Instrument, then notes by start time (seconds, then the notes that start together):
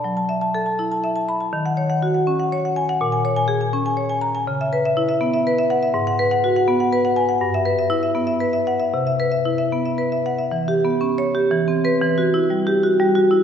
marimba
0.04 F#3
0.17 A5
0.29 E5
0.41 A5
0.55 A4
0.66 A5
0.79 E4
0.92 A5
1.04 E5
1.16 A5
1.29 B5
1.41 A5
1.53 D#3
1.66 F#5
1.77 C#5
1.90 F#5
2.02 F#4
2.14 F#5
2.27 C#4
2.40 F#5
2.52 C#5
2.65 F#5
2.76 G#5
2.89 F#5
3.01 A#2
3.12 G#5
3.25 C#5
3.36 G#5
3.48 G#4
3.61 G#5
3.73 C#4
3.86 G#5
3.97 C#5
4.09 G#5
4.21 A#5
4.35 G#5
4.47 C#3
4.61 E5
4.73 B4
4.85 E5
4.97 E4
5.09 E5
5.21 B3
5.34 E5
5.47 B4
5.58 E5
5.70 F#5
5.83 E5
5.94 G#2
6.07 F#5
6.19 B4
6.31 F#5
6.44 F#4
6.56 F#5
6.68 B3
6.80 F#5
6.93 B4
7.05 F#5
7.16 G#5
7.29 F#5
7.41 G2
7.54 E5
7.65 B4
7.79 E5
7.90 E4
8.03 E5
8.15 B3
8.27 E5
8.40 B4
8.53 E5
8.67 F#5
8.80 E5
8.94 C3
9.07 E5
9.20 B4
9.32 E5
9.45 E4
9.58 E5
9.72 B3
9.85 E5
9.98 B4
10.12 E5
10.26 F#5
10.39 E5
10.52 E3
10.68 G4
10.85 B3
11.01 C#4
11.18 C#5
11.35 G4
11.51 E3
11.68 C4
11.84 C4 B4
12.01 E3
12.18 F#4
12.34 E4
12.50 G3
12.67 G4
12.83 F#4
13.00 G3
13.15 F#4
13.31 E4